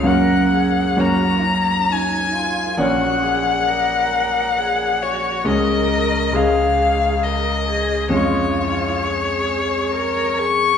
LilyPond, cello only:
\new Staff \with { instrumentName = "Cello" } { \time 3/4 \key fis \major \tempo 4 = 67 ais'8 gis'8 fis'8 cis'8 dis'8 eis'8 | fis'8 gis'8 ais'4 gis'8 fis'8 | ais'4 gis'4 ais'8 gis'8 | eis'4 gis'4 ais'8 gis'8 | }